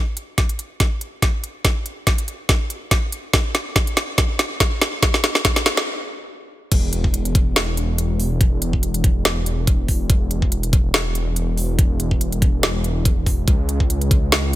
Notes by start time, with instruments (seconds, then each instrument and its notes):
0.17 closed hi-hat
0.38 kick, snare, closed hi-hat
0.49 closed hi-hat
0.59 closed hi-hat
0.80 kick, snare, closed hi-hat
1.01 closed hi-hat
1.22 kick, snare, closed hi-hat
1.44 closed hi-hat
1.65 kick, snare, closed hi-hat
1.86 closed hi-hat
2.07 kick, snare, closed hi-hat
2.18 closed hi-hat
2.28 closed hi-hat
2.49 kick, snare, closed hi-hat
2.70 closed hi-hat
2.91 kick, snare, closed hi-hat
3.12 closed hi-hat
3.33 kick, snare, closed hi-hat
3.55 snare, closed hi-hat
3.76 kick, snare, closed hi-hat
3.87 closed hi-hat
3.97 snare, closed hi-hat
4.18 kick, snare, closed hi-hat
4.39 snare, closed hi-hat
4.60 kick, snare, closed hi-hat
4.82 snare, closed hi-hat
5.02 kick, snare, closed hi-hat
5.14 snare
5.24 snare, closed hi-hat
5.35 snare
5.45 kick, snare, closed hi-hat
5.56 snare, closed hi-hat
5.66 snare, closed hi-hat
5.77 snare
6.72 detuned saw bass E1, kick, closed hi-hat, crash
6.93 closed hi-hat
7.04 kick
7.14 closed hi-hat
7.25 closed hi-hat
7.35 kick, closed hi-hat
7.56 snare, closed hi-hat
7.77 closed hi-hat
7.98 closed hi-hat
8.20 open hi-hat
8.41 kick, closed hi-hat
8.62 closed hi-hat
8.73 kick
8.83 closed hi-hat
8.94 closed hi-hat
9.04 kick, closed hi-hat
9.25 snare, closed hi-hat
9.46 closed hi-hat
9.67 kick, closed hi-hat
9.88 kick, open hi-hat
10.10 kick, closed hi-hat
10.31 closed hi-hat
10.42 kick
10.52 closed hi-hat
10.63 closed hi-hat
10.73 kick, closed hi-hat
10.94 snare, closed hi-hat
11.15 closed hi-hat
11.36 closed hi-hat
11.57 open hi-hat
11.79 kick, closed hi-hat
12.00 closed hi-hat
12.11 kick
12.21 closed hi-hat
12.32 closed hi-hat
12.42 kick, closed hi-hat
12.63 snare, closed hi-hat
12.84 closed hi-hat
13.05 kick, closed hi-hat
13.26 kick, open hi-hat
13.48 detuned saw bass C#2, kick, closed hi-hat
13.69 closed hi-hat
13.80 kick
13.90 closed hi-hat
14.01 closed hi-hat
14.11 kick, closed hi-hat
14.32 snare, closed hi-hat